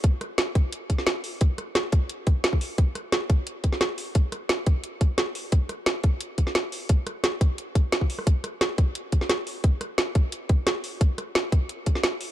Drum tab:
HH |x-x-x-x-x-x-x-o-|x-x-x-x-x-x-x-o-|x-x-x-x-x-x-x-o-|x-x-x-x-x-x-x-o-|
SD |--r-o------oo---|--r-o-------o---|--r-o------oo---|--r-o-------o---|
BD |o-----o---o-----|o-----o---o--o--|o-----o---o-----|o-----o---o-----|

HH |x-x-x-x-x-x-x-o-|x-x-x-x-x-x-x-o-|x-x-x-x-x-x-x-o-|x-x-x-x-x-x-x-o-|
SD |--r-o------oo---|--r-o-------o--r|--r-o------oo---|--r-o-------o---|
BD |o-----o---o-----|o-----o---o--o--|o-----o---o-----|o-----o---o-----|

HH |x-x-x-x-x-x-x-o-|
SD |--r-o------oo---|
BD |o-----o---o-----|